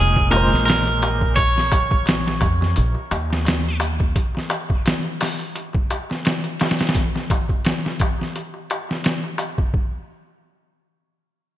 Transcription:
Already playing: A#2 G#3 G#4 C#5
0.00 F1
0.16 kick, darbuka tek
0.30 A#2 G#3 A#4, closed hi-hat, darbuka tek
0.36 C5
0.51 A#1, snare, darbuka tek
0.66 A#4, closed hi-hat, darbuka tek
0.70 snare
0.87 closed hi-hat, darbuka tek
1.02 closed hi-hat, darbuka tek
1.21 kick, darbuka tek
1.36 C#5, kick, closed hi-hat, darbuka tek
1.56 snare, darbuka tek
1.72 kick, closed hi-hat, darbuka tek
1.91 kick, darbuka tek
2.06 snare, closed hi-hat, darbuka tek
2.26 snare, darbuka tek
2.41 F2, kick, closed hi-hat, darbuka tek
2.61 snare, darbuka tek
2.76 A#1, closed hi-hat, darbuka tek
2.95 darbuka tek
3.11 D#2, closed hi-hat, darbuka tek
3.30 snare, darbuka tek
3.45 snare, closed hi-hat, darbuka tek
3.64 darbuka tek
3.80 closed hi-hat, darbuka tek
4.00 kick, darbuka tek
4.16 kick, closed hi-hat, darbuka tek
4.35 snare, darbuka tek
4.50 closed hi-hat, darbuka tek
4.69 kick, darbuka tek
4.86 snare, closed hi-hat, darbuka tek
5.04 darbuka tek
5.21 snare, open hi-hat, darbuka tek
5.39 darbuka tek
5.55 closed hi-hat, darbuka tek
5.73 kick, darbuka tek
5.90 closed hi-hat, darbuka tek
6.10 snare, darbuka tek
6.25 snare, closed hi-hat, darbuka tek
6.44 closed hi-hat, darbuka tek
6.60 snare, closed hi-hat, darbuka tek
6.69 snare, closed hi-hat
6.79 snare, closed hi-hat, darbuka tek
6.87 snare, closed hi-hat
6.95 kick, closed hi-hat, darbuka tek
7.15 snare, darbuka tek
7.30 kick, closed hi-hat, darbuka tek
7.49 kick, darbuka tek
7.65 snare, closed hi-hat, darbuka tek
7.85 snare, darbuka tek
8.00 kick, closed hi-hat, darbuka tek
8.20 snare, darbuka tek
8.36 closed hi-hat, darbuka tek
8.54 darbuka tek
8.70 closed hi-hat, darbuka tek
8.89 snare, darbuka tek
9.04 snare, closed hi-hat, darbuka tek
9.24 darbuka tek
9.38 closed hi-hat, darbuka tek
9.58 kick, darbuka tek
9.74 kick

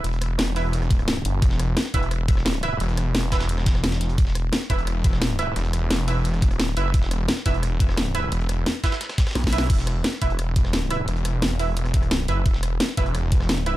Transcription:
0.04 E1, closed hi-hat
0.13 closed hi-hat
0.22 cross-stick, closed hi-hat
0.39 E1, snare, closed hi-hat
0.56 E4 B4 E5, open hi-hat
0.73 closed hi-hat
0.82 cross-stick, closed hi-hat
0.91 kick, closed hi-hat
0.99 cross-stick, closed hi-hat
1.08 snare, closed hi-hat
1.25 F#1, closed hi-hat
1.42 E1, kick, closed hi-hat
1.51 snare
1.60 cross-stick, closed hi-hat
1.77 snare, closed hi-hat
1.85 snare
1.94 E1 E4 B4 E5, kick, closed hi-hat
2.03 closed hi-hat
2.11 cross-stick, closed hi-hat
2.28 kick, closed hi-hat
2.37 cross-stick, snare
2.46 snare, closed hi-hat
2.63 E4 B4 E5, cross-stick, closed hi-hat
2.80 E1, closed hi-hat
2.89 closed hi-hat
2.97 cross-stick, closed hi-hat
3.15 E1, snare, closed hi-hat
3.32 E4 B4 E5, kick, snare, closed hi-hat, open hi-hat
3.41 snare, closed hi-hat
3.49 closed hi-hat
3.58 cross-stick, snare
3.66 kick, snare, closed hi-hat
3.75 cross-stick, snare
3.84 snare, closed hi-hat
3.92 snare, closed hi-hat
4.01 snare, closed hi-hat
4.09 closed hi-hat
4.18 E1, kick, closed hi-hat
4.27 snare
4.35 cross-stick, closed hi-hat
4.53 snare, closed hi-hat
4.61 snare
4.70 E1 E4 B4 E5, kick, closed hi-hat
4.78 closed hi-hat
4.87 cross-stick, closed hi-hat
5.04 kick, closed hi-hat
5.13 cross-stick, snare
5.22 snare, closed hi-hat
5.39 E4 B4 E5, cross-stick, closed hi-hat
5.56 E1, closed hi-hat
5.65 closed hi-hat
5.73 cross-stick, closed hi-hat
5.91 E1, snare, closed hi-hat
6.08 E4 B4 E5, open hi-hat
6.25 closed hi-hat
6.34 cross-stick, closed hi-hat
6.42 kick, closed hi-hat
6.51 D#1, cross-stick, closed hi-hat
6.60 snare, closed hi-hat
6.77 F#1 E4 B4 E5, closed hi-hat
6.94 E1, kick, closed hi-hat
7.03 snare
7.11 cross-stick, closed hi-hat
7.28 snare, closed hi-hat
7.37 snare
7.46 E1 E4 B4 E5, kick, closed hi-hat
7.54 closed hi-hat
7.63 cross-stick, closed hi-hat
7.80 kick, closed hi-hat
7.89 cross-stick, snare
7.97 snare, closed hi-hat
8.15 E4 B4 E5, cross-stick, closed hi-hat
8.32 E1, closed hi-hat
8.40 closed hi-hat
8.49 cross-stick, closed hi-hat
8.66 snare, closed hi-hat
8.84 E4 B4 E5, kick, snare, closed hi-hat, open hi-hat
8.92 snare, closed hi-hat
9.01 snare, closed hi-hat
9.09 cross-stick, snare, closed hi-hat
9.18 kick, snare, closed hi-hat
9.27 cross-stick, snare, closed hi-hat
9.31 snare, closed hi-hat
9.35 B1, snare, closed hi-hat
9.44 kick, snare
9.53 E4 B4 E5, closed hi-hat
9.58 snare
9.70 E1, kick, closed hi-hat, crash
9.78 snare
9.87 cross-stick, closed hi-hat
10.04 snare, closed hi-hat
10.13 snare
10.22 E1 E4 B4 E5, kick, closed hi-hat
10.30 closed hi-hat
10.39 cross-stick, closed hi-hat
10.56 kick, closed hi-hat
10.65 cross-stick, snare
10.73 snare, closed hi-hat
10.91 E4 B4 E5, cross-stick, closed hi-hat
11.08 E1, closed hi-hat
11.16 closed hi-hat
11.25 cross-stick, closed hi-hat
11.42 E1, snare, closed hi-hat
11.59 E4 B4 E5, open hi-hat
11.77 closed hi-hat
11.85 cross-stick, closed hi-hat
11.94 kick, closed hi-hat
12.03 cross-stick, closed hi-hat
12.11 snare, closed hi-hat
12.28 F#1 E4 B4 E5, closed hi-hat
12.46 E1, kick, closed hi-hat
12.54 snare
12.63 cross-stick, closed hi-hat
12.80 snare, closed hi-hat
12.89 snare
12.97 E1 E4 B4 E5, kick, closed hi-hat
13.06 closed hi-hat
13.15 cross-stick, closed hi-hat
13.32 kick, closed hi-hat
13.40 cross-stick, snare
13.49 snare, closed hi-hat
13.66 E4 B4 E5, cross-stick, closed hi-hat

